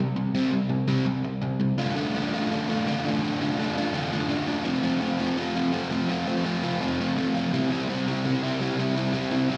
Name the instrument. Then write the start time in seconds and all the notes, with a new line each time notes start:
overdriven electric guitar
0.00 C3 G3
0.16 C3 G3
0.35 C3 G3 C4
0.52 C3 G3
0.69 C3 G3
0.88 C3 G3 C4
1.06 C3 G3
1.24 C3 G3
1.42 C3 G3
1.60 C3 G3
1.78 D3 A3 D4 F4
1.96 D3 A3 D4 F4
2.15 D3 A3 D4 F4
2.34 D3 A3 D4 F4
2.51 D3 A3 D4 F4
2.69 D3 A3 D4 F4
2.87 D3 A3 D4 F4
3.05 D3 A3 D4 F4
3.22 D3 A3 D4 F4
3.41 D3 A3 D4 F4
3.58 D3 A3 D4 F4
3.76 D3 A3 D4 F4
3.93 D3 A3 D4 F4
4.12 D3 A3 D4 F4
4.29 D3 A3 D4 F4
4.47 D3 A3 D4 F4
4.65 F3 A3 C4 F4
4.83 F3 A3 C4 F4
5.01 F3 A3 C4 F4
5.19 F3 A3 C4 F4
5.37 F3 A3 C4 F4
5.56 F3 A3 C4 F4
5.73 F3 A3 C4 F4
5.91 F3 A3 C4 F4
6.09 F3 A3 C4 F4
6.26 F3 A3 C4 F4
6.44 F3 A3 C4 F4
6.62 F3 A3 C4 F4
6.80 F3 A3 C4 F4
7.00 F3 A3 C4 F4
7.17 F3 A3 C4 F4
7.34 F3 A3 C4 F4
7.53 C3 G3 C4 E4
7.71 C3 G3 C4 E4
7.88 C3 G3 C4 E4
8.07 C3 G3 C4 E4
8.25 C3 G3 C4 E4
8.43 C3 G3 C4 E4
8.61 C3 G3 C4 E4
8.78 C3 G3 C4 E4
8.96 C3 G3 C4 E4
9.13 C3 G3 C4 E4
9.30 C3 G3 C4 E4
9.49 C3 G3 C4 E4